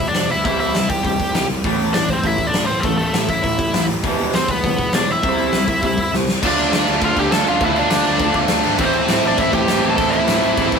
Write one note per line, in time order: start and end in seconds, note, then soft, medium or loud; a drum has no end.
0.00 0.15 E1 medium
0.00 open hi-hat medium
0.08 0.29 D4 medium
0.08 0.29 D5 medium
0.14 0.30 E1 medium
0.14 0.29 E2 medium
0.14 0.29 B2 medium
0.14 0.29 E3 medium
0.14 0.29 G3 medium
0.14 snare loud
0.14 open hi-hat medium
0.30 0.44 D2 medium
0.30 0.44 E4 medium
0.30 0.44 E5 medium
0.30 open hi-hat medium
0.45 0.60 C2 loud
0.45 0.74 C3 medium
0.45 0.74 E3 medium
0.45 0.75 G3 loud
0.45 0.74 C4 medium
0.45 0.59 E4 medium
0.45 0.59 E5 medium
0.45 kick loud
0.45 open hi-hat medium
0.60 0.75 C2 medium
0.60 0.88 E4 medium
0.60 0.88 E5 medium
0.60 open hi-hat medium
0.74 0.89 C2 loud
0.74 0.89 C3 medium
0.74 0.89 E3 medium
0.74 0.88 G3 medium
0.74 snare loud
0.74 open hi-hat medium
0.89 1.04 C2 medium
0.89 1.46 G4 medium
0.89 1.46 G5 medium
0.89 kick loud
0.89 open hi-hat medium
1.04 1.19 C2 medium
1.04 1.19 C3 medium
1.04 1.20 E3 medium
1.04 1.18 G3 medium
1.04 kick medium
1.04 open hi-hat medium
1.19 1.34 C2 medium
1.19 kick medium
1.19 open hi-hat medium
1.34 1.49 C2 medium
1.34 1.48 C3 medium
1.34 1.49 E3 medium
1.34 1.49 G3 medium
1.34 snare loud
1.34 open hi-hat medium
1.49 1.64 C2 medium
1.49 open hi-hat medium
1.64 1.79 A1 medium
1.64 1.93 A2 medium
1.64 1.93 E3 medium
1.64 1.94 A3 loud
1.64 kick loud
1.64 open hi-hat medium
1.79 1.94 A1 medium
1.79 open hi-hat medium
1.94 2.08 A1 medium
1.94 2.08 A2 medium
1.94 2.08 E3 medium
1.94 2.09 D4 medium
1.94 2.10 D5 loud
1.94 snare loud
1.94 open hi-hat medium
2.08 2.23 A1 medium
2.08 2.25 C4 medium
2.08 2.25 C5 medium
2.08 kick medium
2.08 open hi-hat medium
2.23 2.38 A1 medium
2.23 2.38 A2 medium
2.23 2.38 E3 medium
2.23 2.49 E5 medium
2.23 kick medium
2.23 open hi-hat medium
2.28 2.48 E4 medium
2.38 2.52 A1 medium
2.38 kick medium
2.38 open hi-hat medium
2.47 2.69 D4 medium
2.47 2.66 D5 loud
2.53 2.68 A1 medium
2.53 2.68 A2 medium
2.53 2.68 E3 medium
2.53 snare loud
2.53 open hi-hat medium
2.66 2.83 A1 medium
2.66 2.83 C4 medium
2.66 2.83 C5 loud
2.66 open hi-hat soft
2.80 2.98 A1 medium
2.80 2.97 A2 medium
2.80 2.98 E3 medium
2.80 2.98 A3 medium
2.80 2.96 A4 medium
2.80 kick loud
2.80 open hi-hat medium
2.97 3.13 A1 medium
2.97 3.28 A3 medium
2.97 3.29 A4 medium
2.97 open hi-hat medium
3.14 3.28 A1 loud
3.14 3.28 A2 medium
3.14 3.28 E3 medium
3.14 snare loud
3.14 open hi-hat medium
3.29 3.43 A1 medium
3.29 3.85 E5 medium
3.29 kick medium
3.29 open hi-hat medium
3.33 3.87 E4 medium
3.44 3.59 A1 medium
3.44 3.58 A2 medium
3.44 3.58 E3 medium
3.44 kick medium
3.44 open hi-hat medium
3.59 3.72 A1 medium
3.59 kick medium
3.59 open hi-hat medium
3.73 3.88 A1 medium
3.73 3.88 A2 medium
3.73 3.88 E3 medium
3.73 snare loud
3.73 open hi-hat medium
3.89 4.03 A1 medium
3.89 open hi-hat medium
4.04 4.17 E1 medium
4.04 4.32 E2 medium
4.04 4.32 B2 medium
4.04 4.33 E3 loud
4.04 4.33 G3 loud
4.04 4.34 B3 loud
4.04 kick loud
4.04 open hi-hat medium
4.18 4.33 E1 medium
4.18 open hi-hat medium
4.33 4.48 E1 loud
4.33 4.47 E2 medium
4.33 4.47 B2 medium
4.33 4.48 E3 medium
4.33 4.48 G3 medium
4.33 4.50 C5 medium
4.33 snare loud
4.33 open hi-hat medium
4.37 4.50 C4 medium
4.48 4.63 E1 medium
4.48 4.92 B3 medium
4.48 4.96 B4 medium
4.48 kick medium
4.48 open hi-hat medium
4.63 4.77 E1 medium
4.63 4.77 E2 medium
4.63 4.78 B2 medium
4.63 4.77 E3 medium
4.63 4.78 G3 medium
4.63 kick medium
4.63 open hi-hat medium
4.78 4.93 E1 medium
4.78 kick medium
4.78 open hi-hat soft
4.93 5.08 E1 medium
4.93 5.07 E2 medium
4.93 5.08 B2 medium
4.93 5.08 E3 medium
4.93 5.08 G3 medium
4.93 5.09 D4 medium
4.93 5.11 D5 loud
4.93 snare loud
4.93 open hi-hat medium
5.08 5.23 E1 medium
5.08 6.10 E4 medium
5.08 6.14 E5 medium
5.08 open hi-hat soft
5.23 5.38 C2 medium
5.23 5.53 C3 medium
5.23 5.54 G3 medium
5.23 5.54 C4 loud
5.23 kick loud
5.23 open hi-hat medium
5.38 5.52 C2 medium
5.38 open hi-hat medium
5.53 5.67 C2 loud
5.53 5.67 C3 medium
5.53 5.68 G3 medium
5.53 snare loud
5.53 open hi-hat medium
5.68 5.82 C2 medium
5.68 kick medium
5.68 open hi-hat medium
5.82 5.96 C2 medium
5.82 5.96 C3 medium
5.82 5.97 G3 medium
5.82 kick medium
5.82 open hi-hat medium
5.97 6.12 C2 medium
5.97 kick medium
5.97 open hi-hat medium
6.13 6.27 C2 medium
6.13 6.27 C3 medium
6.13 6.27 G3 medium
6.13 snare medium
6.28 6.42 C2 medium
6.28 snare medium
6.43 6.63 D2 loud
6.43 6.75 D3 loud
6.43 6.74 A3 loud
6.43 6.74 D4 loud
6.43 6.85 D4 medium
6.43 6.73 F4 loud
6.43 kick loud
6.43 crash loud
6.43 crash medium
6.47 6.87 D5 loud
6.58 crash medium
6.72 6.82 D3 loud
6.72 7.01 D3 medium
6.72 7.03 A3 loud
6.72 7.03 D4 loud
6.72 7.03 F4 loud
6.72 snare loud
6.72 crash loud
6.87 6.97 D2 loud
6.87 crash medium
7.01 7.12 D2 medium
7.01 7.32 D3 medium
7.01 7.33 A3 loud
7.01 7.30 D4 loud
7.01 7.31 F4 loud
7.01 7.17 F4 medium
7.01 7.20 F5 medium
7.01 kick loud
7.01 crash medium
7.17 7.27 D2 medium
7.17 7.31 G4 medium
7.17 7.32 G5 loud
7.17 kick medium
7.17 crash medium
7.32 7.42 D2 medium
7.32 7.59 D3 loud
7.32 7.60 A3 loud
7.32 7.60 D4 loud
7.32 7.61 F4 loud
7.32 7.46 A4 medium
7.32 7.47 A5 medium
7.32 snare loud
7.32 crash medium
7.47 7.57 D2 medium
7.47 7.60 D3 medium
7.47 7.62 A3 medium
7.47 7.61 D4 medium
7.47 7.61 F4 loud
7.47 7.62 F4 medium
7.47 7.63 F5 loud
7.47 crash medium
7.60 7.81 D2 loud
7.60 7.91 D3 loud
7.60 7.91 A3 loud
7.60 7.90 D4 loud
7.60 7.89 F4 loud
7.60 kick loud
7.60 crash medium
7.65 7.77 E4 medium
7.65 7.79 E5 loud
7.76 8.34 D4 medium
7.76 8.37 D5 medium
7.76 crash medium
7.90 8.01 D3 medium
7.90 8.19 D3 medium
7.90 8.21 A3 medium
7.90 8.21 D4 loud
7.90 8.21 F4 loud
7.90 snare loud
7.90 crash medium
8.05 8.16 D2 loud
8.05 crash medium
8.19 8.30 D2 medium
8.19 8.49 D3 loud
8.19 8.50 A3 medium
8.19 8.49 D4 loud
8.19 8.48 F4 loud
8.19 kick loud
8.19 crash medium
8.34 8.45 D2 medium
8.34 kick medium
8.34 crash medium
8.48 8.60 D2 loud
8.48 8.79 D3 loud
8.48 8.80 A3 loud
8.48 8.79 D4 loud
8.48 8.79 F4 loud
8.48 snare loud
8.48 crash medium
8.63 8.76 G#1 medium
8.63 8.79 D3 medium
8.63 8.80 A3 medium
8.63 8.80 D4 medium
8.63 8.79 F4 medium
8.63 crash medium
8.78 8.99 A1 loud
8.78 9.11 A2 loud
8.78 9.11 E3 loud
8.78 9.10 A3 loud
8.78 9.10 C4 loud
8.78 9.22 C4 medium
8.78 9.09 E4 loud
8.78 kick loud
8.78 crash loud
8.85 9.27 C5 loud
8.93 crash medium
9.08 9.20 A2 loud
9.08 9.38 A2 medium
9.08 9.38 E3 medium
9.08 9.40 A3 medium
9.08 9.39 C4 loud
9.08 9.39 E4 loud
9.08 snare loud
9.08 crash loud
9.23 9.35 A1 medium
9.23 9.39 D4 medium
9.23 crash medium
9.28 9.41 D5 loud
9.38 9.49 A1 medium
9.38 9.69 A2 loud
9.38 9.68 E3 loud
9.38 9.69 A3 loud
9.38 9.68 C4 loud
9.38 9.53 E4 medium
9.38 9.67 E4 loud
9.38 9.55 E5 loud
9.38 kick loud
9.38 crash medium
9.52 9.64 A1 medium
9.52 9.88 G4 medium
9.52 9.89 G5 loud
9.52 kick medium
9.52 crash medium
9.68 9.80 A1 medium
9.68 9.97 A2 loud
9.68 9.98 E3 loud
9.68 9.99 A3 medium
9.68 9.98 C4 loud
9.68 10.00 E4 loud
9.68 snare loud
9.68 crash medium
9.83 9.94 A1 medium
9.83 9.98 A2 medium
9.83 9.98 E3 medium
9.83 9.99 A3 medium
9.83 9.98 C4 medium
9.83 9.98 E4 loud
9.83 crash medium
9.89 9.93 A4 medium
9.89 9.94 A5 loud
9.96 10.18 A1 medium
9.96 10.29 A2 loud
9.96 10.29 E3 loud
9.96 10.29 A3 loud
9.96 10.28 C4 loud
9.96 10.11 A4 loud
9.96 10.13 A5 loud
9.96 kick loud
9.96 crash medium
10.01 10.27 E4 loud
10.10 10.79 E4 medium
10.10 10.79 E5 medium
10.10 crash medium
10.27 10.39 A2 loud
10.27 10.56 A2 medium
10.27 10.57 E3 medium
10.27 10.58 A3 loud
10.27 10.58 C4 loud
10.27 10.58 E4 loud
10.27 snare loud
10.27 crash medium
10.43 10.53 A1 medium
10.43 crash medium
10.57 10.68 A1 medium
10.57 10.79 A2 loud
10.57 10.79 E3 loud
10.57 10.79 A3 loud
10.57 10.79 C4 loud
10.57 10.79 E4 loud
10.57 kick loud
10.57 crash medium
10.72 10.79 A1 medium
10.72 kick medium
10.72 crash medium